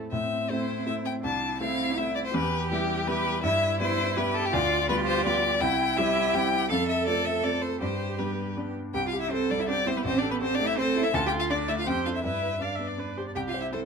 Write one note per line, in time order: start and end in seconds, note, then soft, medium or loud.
0.00 0.12 A2 medium
0.00 0.12 A3 medium
0.00 0.15 A3 soft
0.00 0.15 C4 medium
0.00 0.15 E4 medium
0.11 0.48 A2 medium
0.11 1.20 C4 medium
0.11 0.51 E5 medium
0.49 0.83 A3 medium
0.49 0.83 C4 medium
0.49 1.19 E4 medium
0.49 0.83 E4 medium
0.49 0.86 C5 loud
0.86 1.20 A3 medium
0.86 1.20 C4 medium
0.86 1.20 E4 medium
0.86 0.94 E5 loud
1.05 1.13 G5 loud
1.22 1.59 C2 medium
1.22 1.59 D4 medium
1.22 2.30 E4 medium
1.22 1.60 A5 loud
1.60 1.93 A3 medium
1.60 1.98 C4 medium
1.60 1.93 C4 medium
1.60 1.94 E4 medium
1.60 1.99 F5 loud
1.96 2.30 A3 medium
1.96 2.30 C4 medium
1.96 2.33 E4 medium
1.96 2.30 E4 medium
1.96 2.15 E5 loud
2.15 2.19 D5 loud
2.25 2.35 C5 loud
2.33 2.70 E2 medium
2.33 3.06 G4 loud
2.33 3.40 G4 medium
2.33 2.70 B4 loud
2.71 3.04 G3 medium
2.71 3.04 B3 medium
2.71 3.04 E4 medium
2.71 3.09 G4 loud
3.07 3.40 G3 medium
3.07 3.40 B3 medium
3.07 3.41 E4 medium
3.07 3.43 G4 loud
3.07 3.43 B4 loud
3.43 3.79 G2 medium
3.43 4.49 E4 loud
3.43 3.79 E4 medium
3.43 3.79 E5 loud
3.80 4.13 G3 medium
3.80 4.13 B3 medium
3.80 4.18 E4 loud
3.80 4.13 E4 medium
3.80 4.18 C5 loud
4.16 4.49 G3 medium
4.16 4.50 B3 medium
4.16 4.50 E4 medium
4.16 4.55 G4 loud
4.16 4.36 B4 loud
4.34 4.47 A4 loud
4.45 4.54 G4 loud
4.53 4.88 D2 loud
4.53 5.57 F4 loud
4.53 4.89 F4 loud
4.53 4.88 D5 loud
4.89 5.21 G3 medium
4.89 5.22 B3 medium
4.89 5.22 F4 medium
4.89 5.60 G4 loud
4.89 4.96 B4 loud
5.07 5.24 C5 loud
5.25 5.57 G3 medium
5.25 5.58 B3 medium
5.25 5.58 F4 medium
5.25 5.62 D5 loud
5.61 5.96 C2 loud
5.61 6.66 E4 loud
5.61 5.99 E4 loud
5.61 5.99 G5 loud
5.97 6.30 G3 medium
5.97 6.30 C4 medium
5.97 6.31 E4 medium
5.97 6.71 G4 loud
5.97 6.36 E5 loud
6.34 6.66 G3 medium
6.34 6.67 C4 medium
6.34 6.67 E4 medium
6.34 6.70 G5 loud
6.70 7.06 F2 medium
6.70 7.80 A4 loud
6.70 7.77 A4 medium
6.70 6.88 F5 loud
6.88 7.06 E5 loud
7.07 7.40 A3 medium
7.07 7.40 C4 medium
7.07 7.40 F4 medium
7.07 7.27 D5 loud
7.25 7.45 E5 loud
7.43 7.77 A3 medium
7.43 7.77 C4 medium
7.43 7.78 F4 medium
7.43 7.63 D5 loud
7.62 7.80 C5 medium
7.80 8.18 G2 medium
7.80 8.73 G4 medium
7.80 8.71 G4 medium
7.80 8.19 C5 medium
8.18 8.53 G3 medium
8.18 8.53 B3 medium
8.18 8.53 D4 medium
8.18 8.56 B4 medium
8.57 8.90 G3 soft
8.57 8.91 B3 medium
8.57 8.91 D4 medium
8.94 10.01 C2 medium
8.94 9.06 G4 loud
8.94 9.06 G5 loud
9.07 9.12 F4 medium
9.07 9.20 F5 medium
9.13 9.42 G4 medium
9.19 9.32 E4 medium
9.19 9.32 E5 loud
9.31 9.49 C4 medium
9.31 9.61 C4 medium
9.31 9.70 A4 medium
9.31 9.52 C5 loud
9.50 9.79 G3 medium
9.50 9.54 D4 loud
9.50 9.63 D5 loud
9.59 9.63 E4 medium
9.59 9.68 E5 medium
9.68 9.97 C4 medium
9.68 9.75 D4 loud
9.68 10.79 G4 medium
9.68 9.89 D5 loud
9.86 9.90 C4 loud
9.86 10.04 E4 medium
9.86 9.99 C5 loud
9.96 9.99 B3 medium
9.96 10.04 B4 loud
10.05 11.11 A1 medium
10.05 10.19 C4 loud
10.05 10.20 C5 loud
10.18 10.32 D4 loud
10.18 10.30 D5 loud
10.23 10.52 A4 medium
10.30 10.42 B3 loud
10.30 10.35 B4 loud
10.41 10.70 C4 medium
10.41 10.57 C4 loud
10.41 10.56 C5 loud
10.55 10.68 D4 loud
10.55 10.68 D5 loud
10.59 10.88 A3 medium
10.67 10.80 E4 loud
10.67 10.77 E5 loud
10.78 11.07 C4 medium
10.78 11.02 C4 loud
10.78 11.13 A4 loud
10.78 11.05 C5 loud
10.96 11.14 E4 medium
11.03 11.07 E4 loud
11.03 11.16 E5 loud
11.14 11.84 D2 loud
11.14 11.52 F4 loud
11.14 11.19 A4 loud
11.14 11.26 A5 loud
11.26 11.31 G4 loud
11.26 11.32 G5 loud
11.32 11.61 A4 medium
11.38 11.52 F4 medium
11.38 11.44 F5 loud
11.50 11.70 D4 loud
11.50 11.80 D4 medium
11.50 11.86 D5 medium
11.50 11.58 D5 loud
11.68 11.87 A3 medium
11.68 11.77 E4 medium
11.68 11.72 E5 loud
11.78 11.87 F4 medium
11.78 11.88 F5 loud
11.86 12.23 F2 medium
11.86 12.08 G4 medium
11.86 12.23 C5 medium
11.86 12.05 G5 loud
12.05 12.22 D4 medium
12.05 12.13 F4 medium
12.05 12.22 A4 medium
12.05 12.09 F5 medium
12.14 12.22 E4 medium
12.14 12.23 E5 medium
12.23 13.32 G2 medium
12.23 12.60 E4 medium
12.23 12.57 B4 medium
12.23 12.63 E5 loud
12.42 12.72 B4 medium
12.61 12.91 D4 medium
12.61 13.16 D4 medium
12.61 13.17 D5 medium
12.61 12.77 F5 medium
12.75 13.09 B3 soft
12.75 12.89 E5 medium
12.87 13.01 D5 medium
12.98 13.28 D4 medium
12.98 13.19 B4 medium
13.17 13.36 G4 medium
13.17 13.27 C5 medium
13.28 13.36 D5 medium
13.35 13.85 C2 medium
13.35 13.40 G4 medium
13.35 13.75 G4 medium
13.35 13.41 G5 medium
13.48 13.53 F4 medium
13.48 13.60 F5 medium
13.54 13.84 C5 medium
13.60 13.71 E4 medium
13.60 13.66 E5 medium
13.72 13.79 C4 medium
13.72 13.85 E4 medium
13.72 13.85 A4 medium
13.72 13.80 C5 medium